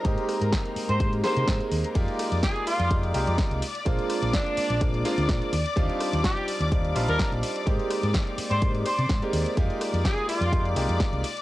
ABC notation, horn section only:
X:1
M:4/4
L:1/16
Q:"Swing 16ths" 1/4=126
K:Fdor
V:1 name="Horn section"
z6 z c2 z c3 z3 | z4 A2 F3 z6 z | z4 D4 z8 | z4 G2 z4 z B2 z3 |
z6 z c2 z c3 z3 | z4 A2 F3 z6 z |]